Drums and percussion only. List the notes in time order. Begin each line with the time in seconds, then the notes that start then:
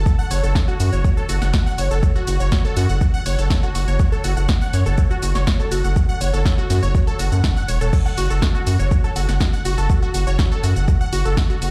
0.06 kick, shaker
0.19 shaker
0.31 open hi-hat, shaker
0.44 shaker
0.55 kick, snare, shaker
0.68 shaker
0.80 open hi-hat, shaker
0.93 shaker
1.04 kick, shaker
1.17 shaker
1.29 open hi-hat, shaker
1.42 snare, shaker
1.54 kick, snare, shaker
1.66 shaker
1.78 open hi-hat, shaker
1.91 shaker
2.03 kick, shaker
2.16 shaker
2.27 open hi-hat, shaker
2.40 shaker
2.52 kick, snare, shaker
2.65 shaker
2.77 open hi-hat, shaker
2.89 shaker
3.01 kick, shaker
3.14 shaker
3.26 open hi-hat, shaker
3.39 shaker
3.50 kick, snare, open hi-hat, shaker
3.63 shaker
3.75 open hi-hat, shaker
3.88 shaker
4.00 kick, shaker
4.12 shaker
4.24 open hi-hat, shaker
4.37 shaker
4.49 kick, snare, shaker
4.61 shaker
4.73 open hi-hat, shaker
4.86 shaker
4.98 kick, shaker
5.11 shaker
5.23 open hi-hat, shaker
5.35 snare, shaker
5.47 kick, snare, shaker
5.60 shaker
5.72 open hi-hat, shaker
5.84 shaker
5.96 kick, shaker
6.09 shaker
6.21 open hi-hat, shaker
6.34 shaker
6.45 kick, snare, shaker
6.58 shaker
6.70 snare, open hi-hat, shaker
6.83 shaker
6.95 kick, shaker
7.07 shaker
7.19 open hi-hat, shaker
7.32 shaker
7.44 kick, snare, open hi-hat, shaker
7.57 shaker
7.69 open hi-hat, shaker
7.81 shaker
7.93 kick, crash, shaker
8.06 shaker
8.18 open hi-hat, shaker
8.30 shaker
8.42 kick, snare, shaker
8.55 shaker
8.67 open hi-hat, shaker
8.79 shaker
8.91 kick, shaker
9.04 shaker
9.16 open hi-hat, shaker
9.29 snare, shaker
9.41 kick, snare, shaker
9.53 shaker
9.65 open hi-hat, shaker
9.78 shaker
9.90 kick, shaker
10.02 shaker
10.14 open hi-hat, shaker
10.27 shaker
10.39 kick, snare, shaker
10.52 shaker
10.64 open hi-hat, shaker
10.76 shaker
10.88 kick, shaker
11.01 shaker
11.13 open hi-hat, shaker
11.25 shaker
11.37 kick, snare, open hi-hat, shaker
11.50 shaker
11.62 open hi-hat, shaker